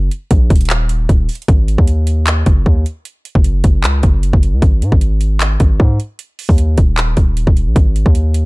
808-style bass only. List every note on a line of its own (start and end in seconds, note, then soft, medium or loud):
0.31 0.50 A#1 loud
0.50 1.07 D#1 loud
1.09 1.28 D#1 loud
1.48 1.77 G#1 loud
1.78 2.44 D#2 loud
2.46 2.65 F#1 loud
2.66 2.85 D#2 loud
3.35 3.63 F#1 loud
3.64 3.85 F#1 loud
3.84 4.02 C#2 loud
4.03 4.32 F#1 loud
4.33 4.54 F#1 loud
4.53 4.62 C#2 loud
4.62 4.83 G#1 loud
4.82 4.92 G#2 loud
4.92 5.57 G#1 loud
5.60 5.79 G#1 loud
5.80 5.99 G#2 loud
6.49 6.77 D#2 loud
6.78 7.15 D#1 loud
7.17 7.46 D#1 loud
7.47 7.68 D#1 loud
7.67 7.75 A#1 loud
7.76 8.05 G#1 loud
8.06 8.45 D#2 loud